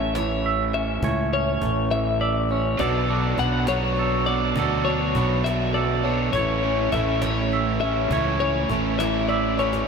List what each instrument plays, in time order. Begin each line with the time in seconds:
Already playing: fingered electric bass A1, clean electric guitar A2 A3 C#4 C#5 E5
0.14 clean electric guitar E3 C#5, cajon slap
0.44 clean electric guitar E5, cajon slap
0.73 clean electric guitar C#4 E5, cajon slap
1.02 fingered electric bass C#2, clean electric guitar A2 C#5, cajon bass
1.33 clean electric guitar C#4 C#5, cajon slap
1.62 fingered electric bass A1, clean electric guitar A3, cajon bass
1.91 clean electric guitar E3 E5, cajon slap
2.21 clean electric guitar D5 E5, cajon slap
2.49 clean electric guitar C#4 C#5, cajon slap
2.78 fingered electric bass B1, overdriven electric guitar B2 F#3 B3 D4 F#4, clean electric guitar B2 A4 D5, cajon bass
3.08 overdriven electric guitar B3 D4 F#4, clean electric guitar D4, cajon slap
3.38 fingered electric bass B1, overdriven electric guitar F#3 B3 D4 F#4, clean electric guitar B3 F#5, cajon bass
3.67 overdriven electric guitar B2 F#3 B3 D4 F#4, clean electric guitar F#3 C#5, cajon slap
3.96 clean electric guitar A4, cajon slap
4.26 overdriven electric guitar B3 D4 F#4, clean electric guitar D4 D5, cajon slap
4.56 fingered electric bass D2, overdriven electric guitar B2 F#3 B3 D4 F#4, clean electric guitar B2 A4, cajon bass
4.85 overdriven electric guitar B3 D4 F#4, clean electric guitar D4 C#5, cajon slap
5.15 fingered electric bass B1, overdriven electric guitar F#3 B3 D4 F#4, clean electric guitar B3, cajon bass
5.44 overdriven electric guitar B2 F#3 B3 D4 F#4, clean electric guitar F#3 E5, cajon slap
5.74 clean electric guitar A4 D5, cajon slap
6.03 overdriven electric guitar B3 D4 F#4, clean electric guitar D4 C#5, cajon slap
6.33 fingered electric bass A1, overdriven electric guitar A2 E3 A3 C#4 E4, clean electric guitar A2 C#5, cajon bass
6.63 overdriven electric guitar A3 C#4 E4, clean electric guitar C#4, cajon slap
6.92 fingered electric bass A1, overdriven electric guitar E3 A3 C#4 E4, clean electric guitar A3 E5, cajon bass
7.21 overdriven electric guitar A2 E3 A3 C#4 E4, clean electric guitar E3 C#5, cajon slap
7.51 clean electric guitar E5, cajon slap
7.80 overdriven electric guitar A3 C#4 E4, clean electric guitar C#4 E5, cajon slap
8.09 fingered electric bass C#2, overdriven electric guitar A2 E3 A3 C#4 E4, clean electric guitar A2 C#5, cajon bass
8.39 overdriven electric guitar A3 C#4 E4, clean electric guitar C#4 C#5, cajon slap
8.69 fingered electric bass A1, overdriven electric guitar E3 A3 C#4 E4, clean electric guitar A3, cajon bass
8.99 overdriven electric guitar A2 E3 A3 C#4 E4, clean electric guitar E3 E5, cajon slap
9.28 clean electric guitar D5 E5, cajon slap
9.57 overdriven electric guitar A3 C#4 E4, clean electric guitar C#4 C#5, cajon slap
9.73 cajon slap